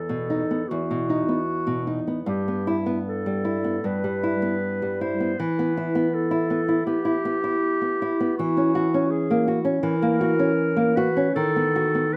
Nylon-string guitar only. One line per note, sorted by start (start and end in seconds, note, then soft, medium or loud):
0.00 0.65 E2 soft
0.00 0.34 B3 soft
0.09 0.41 B2 soft
0.30 0.62 D#4 soft
0.51 0.82 B3 soft
0.71 2.23 E2 soft
0.91 1.21 B2 soft
1.10 1.40 D#4 soft
1.28 1.91 B3 soft
1.67 1.98 B2 soft
1.87 2.19 D#4 soft
2.07 2.27 B3 soft
2.26 3.79 G2 soft
2.48 2.78 B3 soft
2.67 2.98 E4 soft
2.86 3.48 B3 soft
3.26 3.56 G3 soft
3.45 3.75 E4 soft
3.64 3.95 B3 soft
3.84 5.34 G2 soft
4.04 4.34 G3 soft
4.23 4.53 E4 soft
4.42 5.04 B3 soft
4.82 5.12 G3 soft
5.01 5.31 E4 soft
5.20 5.38 B3 soft
5.40 6.83 E3 soft
5.59 5.88 B3 soft
5.77 6.06 E4 soft
5.95 6.49 B3 soft
6.31 6.60 E4 soft
6.50 6.79 B3 soft
6.68 6.98 E4 soft
6.87 7.16 B3 soft
7.05 7.35 E4 soft
7.25 7.55 B3 soft
7.44 8.01 E4 soft
7.82 8.11 B3 soft
8.02 8.31 E4 soft
8.20 8.38 B3 soft
8.39 9.79 E3 soft
8.57 8.86 C#4 soft
8.75 9.04 F#4 soft
8.94 9.50 C#4 soft
9.30 9.58 A#3 soft
9.48 9.76 F#4 soft
9.65 9.93 C#4 soft
9.83 11.31 E3 soft
10.02 10.31 A#3 soft
10.21 10.50 F#4 soft
10.39 11.00 C#4 soft
10.76 11.07 A#3 soft
10.97 11.27 F#4 soft
11.17 11.35 C#4 soft
11.36 12.17 D#3 medium
11.56 11.86 B3 soft
11.76 12.05 F#4 soft
11.95 12.17 B3 soft